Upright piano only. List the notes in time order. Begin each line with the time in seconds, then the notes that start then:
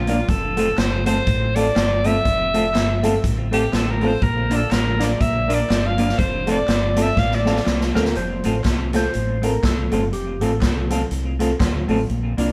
0.07 A#3 D4 F4 A#4
0.56 A3 C4 F4 A4
1.06 A3 C4 F4 A4
1.56 A3 C4 F4 A4
2.04 A3 C4 F4 A4
2.54 A3 C4 F4 A4
3.03 A3 C4 F4 A4
3.52 A3 C4 F4 A4
4.02 A3 C4 F4 A4
4.50 A#3 D4 F4 A#4
4.99 A#3 D4 F4 A#4
5.48 A#3 D4 F4 A#4
5.98 A#3 D4 F4 A#4
6.46 A3 C4 F4 A4
6.96 A3 C4 F4 A4
7.46 A3 C4 F4 A4
7.95 A3 C4 F4 A4
8.45 A3 C4 F4 A4
8.93 A3 C4 F4 A4
9.43 A3 C4 F4 A4
9.92 A3 C4 F4 A4
10.41 A3 C4 F4 A4
10.90 A3 C4 F4 A4
11.40 A3 C4 F4 A4
11.89 A3 C4 F4 A4
12.37 A#3 D4 F4 A#4